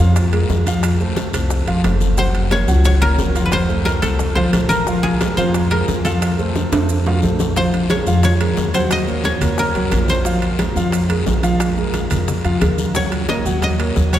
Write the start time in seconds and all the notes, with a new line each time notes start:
Already playing: C#5
0.00 F2 F3 F4 F5
0.15 high bongo, high conga, high timbale, long guiro, maracas
0.32 G#3 G#4 A#4, high conga, high timbale, maracas
0.49 F2, high bongo, low bongo, high conga, low timbale, short guiro, maracas
0.66 F3 F4 F5, high bongo, high conga, high timbale, short guiro, maracas
0.83 high bongo, high timbale, long guiro, maracas
1.00 A3 A4 C5, high bongo, high conga, maracas
1.16 high bongo, high conga, high timbale, short guiro, maracas
1.33 C2 A3 A4 C5, high bongo, high conga, high timbale, short guiro, maracas
1.50 high bongo, high conga, long guiro, maracas
1.67 A1 F3 F4 F5, high conga, high timbale, maracas
1.84 F#1 A3 A4 C5, high bongo, low bongo, high conga, high timbale, low timbale, short guiro, maracas
2.00 high bongo, high conga, short guiro, maracas
2.17 F#3 F#4 C5 F#5, high bongo, long guiro, maracas
2.34 high bongo, high conga, high timbale, maracas
2.51 A#3 A#4 C#5, high bongo, high conga, high timbale, short guiro, maracas
2.68 C#2 F#3 F#4 F#5, high bongo, high conga, short guiro, maracas
2.84 C#5, high bongo, high conga, high timbale, long guiro, maracas
3.02 A#3 A#4 C#5, high conga, high timbale, maracas
3.18 F2, high bongo, low bongo, high conga, low timbale, short guiro, maracas
3.35 F3 F4 F5, high bongo, high conga, high timbale, short guiro, maracas
3.46 B4
3.52 C5, high bongo, high conga, high timbale, long guiro, maracas
3.69 A3 A4 C5, high bongo, high conga, maracas
3.85 A#4, high bongo, high conga, high timbale, short guiro, maracas
4.02 C2 A3 A4 C5, high bongo, high conga, high timbale, short guiro, maracas
4.19 high bongo, high conga, long guiro, maracas
4.35 C2 F3 F4 C5 F5, high conga, high timbale, maracas
4.53 A#1 A3 A4 C5, high bongo, low bongo, high conga, high timbale, low timbale, short guiro, maracas
4.69 A#4, high bongo, high conga, short guiro, maracas
4.87 F3 F4 F5, high bongo, long guiro, maracas
5.03 G#4, high bongo, high conga, high timbale, maracas
5.21 G#3 G#4 A#4, high bongo, high conga, high timbale, short guiro, maracas
5.37 F2 F3 F4 C5 F5, high bongo, high conga, short guiro, maracas
5.54 high bongo, high conga, high timbale, long guiro, maracas
5.71 G#3 G#4 A#4, high conga, high timbale, maracas
5.88 F2, high bongo, low bongo, high conga, short guiro, maracas
6.05 F3 F4 A4 F5, high bongo, high conga, high timbale, short guiro, maracas
6.22 high bongo, high timbale, long guiro, maracas
6.39 A3 A4 C5, high bongo, high conga, maracas
6.55 high bongo, high conga, high timbale, short guiro, maracas
6.72 F2 A3 A4 C5, high bongo, high conga, high timbale, short guiro, maracas
6.89 high conga, long guiro, maracas
7.06 F3 F4 F5, high conga, low timbale, maracas
7.22 A#1 A3 A4 C5, high conga, low timbale, short guiro, maracas
7.39 low bongo, high conga, low timbale, short guiro, maracas
7.56 F3 F4 C5 F5, high bongo, high conga, long guiro, maracas
7.73 high bongo, high conga, high timbale, maracas
7.90 G#3 G#4 A#4 C#5, high bongo, high conga, high timbale, short guiro, maracas
8.07 F2 F3 F4 F5, high bongo, high conga, short guiro, maracas
8.23 C#5, high bongo, high timbale, long guiro, maracas
8.40 G#3 G#4 A#4, high conga, high timbale, maracas
8.57 D#2, high bongo, low bongo, high conga, low timbale, short guiro, maracas
8.74 F#3 F#4 C5 F#5, high bongo, high conga, high timbale, short guiro, maracas
8.91 D#5, high bongo, high conga, high timbale, long guiro, maracas
9.07 A#3 A#4 C#5, high bongo, high conga, maracas
9.24 C#5, high bongo, high conga, high timbale, short guiro, maracas
9.41 D#2 A#3 A#4 C#5, high bongo, high conga, low conga, high timbale, short guiro, maracas
9.58 A#4, high bongo, high conga, long guiro, maracas
9.74 C2 F#3 F#4 F#5, high conga, high timbale, maracas
9.91 A#1 A#3 A#4 C#5, high bongo, low bongo, high conga, high timbale, short guiro, maracas
10.08 C5, high bongo, high conga, short guiro, maracas
10.25 F3 F4 F5, high bongo, high conga, long guiro, maracas
10.42 high bongo, high conga, high timbale, maracas
10.59 G#3 G#4 A#4, high bongo, high conga, high timbale, short guiro, maracas
10.76 F2 F3 F4 F5, high bongo, high conga, short guiro, maracas
10.92 high bongo, high conga, high timbale, long guiro, maracas
11.09 G#3 G#4 A#4, high conga, high timbale, maracas
11.26 A#1, high bongo, low bongo, high conga, low timbale, short guiro, maracas
11.43 F3 F4 F5, high bongo, high conga, high timbale, short guiro, maracas
11.60 high bongo, high conga, high timbale, long guiro, maracas
11.77 G#3 G#4 A#4, high bongo, high conga, maracas
11.94 high bongo, high conga, high timbale, short guiro, maracas
12.10 F2 G#3 G#4 A#4, high bongo, high conga, low conga, high timbale, short guiro, maracas
12.28 high bongo, high conga, low conga, long guiro, maracas
12.44 F2 F3 F4 F5, high conga, high timbale, maracas
12.61 D#2 G#3 G#4 A#4, high bongo, low bongo, high conga, high timbale, short guiro, maracas
12.78 high bongo, high conga, short guiro, maracas
12.95 F#3 F#4 C#5 F#5, high bongo, high conga, long guiro, maracas
13.12 high bongo, high conga, high timbale, maracas
13.29 A#3 A#4 C#5 D#5, high bongo, high conga, high timbale, short guiro, maracas
13.45 D#2 F#3 F#4 F#5, high bongo, high conga, short guiro, maracas
13.62 D#5, high bongo, high conga, high timbale, long guiro, maracas
13.79 A#3 A#4 C#5, high conga, high timbale, maracas
13.96 D#2, high bongo, low bongo, high conga, short guiro, maracas
14.13 F#3 F#4 C#5 F#5, high bongo, high conga, high timbale, short guiro, maracas